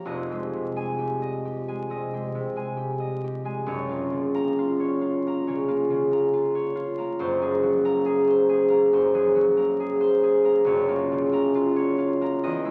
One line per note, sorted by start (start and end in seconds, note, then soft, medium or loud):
0.00 0.15 A#1 medium
0.00 0.16 A#2 medium
0.00 2.59 F3 medium
0.00 0.13 A#3 medium
0.00 0.30 G4 medium
0.00 0.12 C#5 medium
0.00 0.12 A#5 medium
0.05 3.68 F1 medium
0.05 3.69 F2 medium
0.05 1.21 D#5 medium
0.31 0.75 G#3 soft
0.31 0.97 G4 medium
0.54 1.89 C3 medium
0.76 1.68 G#3 medium
0.76 1.67 G#5 medium
0.98 1.44 G4 medium
1.22 1.89 D#5 medium
1.45 2.12 G4 medium
1.68 2.13 G#3 medium
1.68 2.55 G#5 medium
1.90 2.34 C3 medium
1.90 2.98 D#5 medium
2.13 2.55 G#3 medium
2.13 2.76 G4 medium
2.35 3.72 C3 medium
2.56 3.44 G#3 medium
2.56 3.44 G#5 medium
2.77 3.23 G4 medium
3.00 3.71 D#5 medium
3.24 3.72 G4 medium
3.45 3.71 G#3 medium
3.45 3.71 G#5 medium
3.66 7.18 F#1 medium
3.66 7.19 F#2 medium
3.66 4.79 C#5 medium
3.89 4.33 A#3 medium
3.89 4.57 F4 medium
4.12 5.47 C#3 medium
4.34 5.26 A#3 medium
4.34 5.26 A#5 medium
4.59 5.00 F4 medium
4.80 5.46 C#5 medium
5.01 5.67 F4 medium
5.27 5.67 A#3 medium
5.27 6.11 A#5 medium
5.47 5.89 C#3 medium
5.47 6.54 C#5 medium
5.68 6.10 A#3 medium
5.68 6.32 F4 medium
5.90 7.23 C#3 medium
6.11 6.97 A#3 medium
6.11 6.97 A#5 medium
6.33 6.74 F4 medium
6.55 7.23 C#5 medium
6.76 7.23 F4 medium
6.98 7.40 A#3 medium
6.98 7.84 A#5 medium
7.19 10.63 F#1 medium
7.19 8.92 F#2 medium
7.19 8.27 C5 medium
7.41 7.84 A#3 medium
7.41 8.04 G#4 medium
7.63 9.13 F#3 medium
7.85 8.69 A#3 medium
7.85 8.68 A#5 loud
8.06 8.48 G#4 medium
8.28 8.92 C5 medium
8.49 9.14 G#4 medium
8.69 9.56 A#3 medium
8.69 9.56 A#5 medium
8.93 10.65 F#2 medium
8.93 9.99 C5 medium
9.14 9.34 F#3 medium
9.14 9.79 G#4 medium
9.35 12.49 F#3 medium
9.57 10.43 A#3 medium
9.57 10.44 A#5 medium
9.80 10.22 G#4 medium
10.01 10.71 C5 medium
10.23 10.71 G#4 medium
10.44 10.88 A#3 medium
10.44 11.32 A#5 medium
10.64 12.47 F#1 medium
10.64 12.48 F#2 medium
10.64 11.75 C#5 medium
10.89 11.31 A#3 medium
10.89 11.54 F4 medium
11.12 12.49 C#3 medium
11.32 12.20 A#3 medium
11.32 12.20 A#5 loud
11.55 11.97 F4 medium
11.76 12.48 C#5 medium
11.98 12.48 F4 medium
12.21 12.48 A#3 medium
12.21 12.48 A#5 medium
12.43 12.71 E2 loud
12.43 12.71 D#5 medium
12.65 12.71 G#3 medium
12.65 12.71 E4 medium